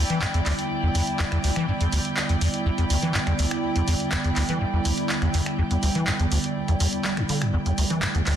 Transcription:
Already playing: ambient pad D3 G3 B3 E4, string section E4 D5 G5
0.10 acid bass E3, closed hi-hat
0.22 acid bass G2, clap
0.34 acid bass E2, closed hi-hat
0.46 acid bass D2, clap, open hi-hat
0.59 closed hi-hat
0.83 acid bass E2
0.95 acid bass E2, open hi-hat
1.07 closed hi-hat
1.19 acid bass E2, clap
1.32 acid bass E2, finger snap, closed hi-hat
1.44 acid bass D2, open hi-hat
1.56 acid bass E3, finger snap, closed hi-hat
1.68 acid bass G2
1.81 acid bass E2, closed hi-hat
1.93 acid bass D2, open hi-hat
2.05 closed hi-hat
2.17 clap
2.29 acid bass E2, closed hi-hat
2.41 acid bass E2, open hi-hat
2.54 closed hi-hat
2.66 acid bass E2
2.78 acid bass E2, closed hi-hat
2.90 acid bass D2, open hi-hat
3.02 acid bass E3, closed hi-hat
3.14 acid bass G2, clap
3.27 acid bass E2, finger snap, closed hi-hat
3.39 acid bass D2, open hi-hat
3.51 finger snap, closed hi-hat
3.76 acid bass E2, closed hi-hat
3.88 acid bass E2, open hi-hat
4.00 closed hi-hat
4.12 acid bass E2, clap
4.24 acid bass E2, closed hi-hat
4.36 acid bass D2, clap, open hi-hat
4.49 acid bass E3, closed hi-hat
4.61 acid bass G2
4.73 acid bass E2
4.85 acid bass D2, open hi-hat
4.98 closed hi-hat
5.09 clap
5.22 acid bass E2, finger snap, closed hi-hat
5.34 acid bass E2, open hi-hat
5.46 finger snap, closed hi-hat
5.58 acid bass E2
5.71 acid bass E2, closed hi-hat
5.83 acid bass D2, open hi-hat
5.95 acid bass E3, closed hi-hat
6.07 acid bass G2, clap
6.20 acid bass E2, closed hi-hat
6.32 acid bass D2, open hi-hat
6.44 closed hi-hat
6.68 acid bass E2, closed hi-hat
6.80 acid bass E2, open hi-hat
6.93 closed hi-hat
7.04 acid bass G3, clap
7.17 acid bass E2, finger snap, closed hi-hat
7.29 acid bass D3, open hi-hat
7.42 acid bass G2, finger snap, closed hi-hat
7.54 acid bass E2, ambient pad A3 G4
7.66 acid bass E2, closed hi-hat
7.78 acid bass D2, open hi-hat
7.90 acid bass E3, closed hi-hat
8.02 acid bass G2, clap
8.15 acid bass E2, closed hi-hat
8.26 acid bass D2, clap, open hi-hat

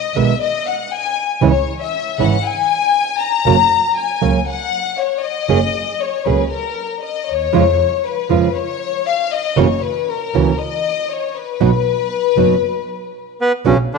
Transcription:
Already playing: violin section D#5
0.14 double bass B1, nylon-string guitar B2 D#3 G#3 B3, violin section E5
0.42 violin section D#5
0.67 violin section F#5
0.92 violin section G#5
1.41 double bass C#2, nylon-string guitar C#3 E3 G#3 C#4 E4, violin section C#5
1.82 violin section E5
2.18 double bass G#1, nylon-string guitar C#3 E3 G#3 C#4 E4, violin section F#5
2.46 violin section G#5
3.21 violin section A#5
3.45 double bass F#1, nylon-string guitar C#3 F#3 A#3 C#4 F#4
3.96 violin section G#5
4.21 double bass C#2, nylon-string guitar C#3 F#3 A#3 C#4 F#4
4.49 violin section F#5
4.98 violin section C#5
5.23 violin section D#5
5.49 double bass F#1, nylon-string guitar F#3 A#3 C#4 G#4
6.00 violin section C#5
6.26 double bass C#2, nylon-string guitar F#3 A#3 C#4 G#4, violin section B4
6.51 violin section A#4
7.03 violin section D#5
7.28 double bass D#2, violin section C#5
7.53 double bass F2, nylon-string guitar C#3 F3 G#3 C#4 F4
8.05 violin section B4
8.29 double bass F2, nylon-string guitar C#3 F3 G#3 C#4 F4
8.56 violin section C#5
9.06 violin section F5
9.32 violin section D#5
9.56 double bass F#1, nylon-string guitar C#3 E3 A#3 C#4 F#4, violin section C#5
9.84 violin section B4
10.10 violin section A#4
10.34 double bass C#2, nylon-string guitar C#3 E3 A#3 C#4 F#4
10.60 violin section D#5
11.11 violin section C#5
11.36 violin section B4
11.60 double bass B1, nylon-string guitar B2 F#3 B3 D#4 F#4
12.36 double bass F#1, nylon-string guitar B2 F#3 B3 D#4 F#4
13.41 bandoneon B3 B4
13.65 double bass B1, nylon-string guitar B2 F#3 B3 D4 F#4, bandoneon C#3 C#4
13.94 bandoneon D3 D4

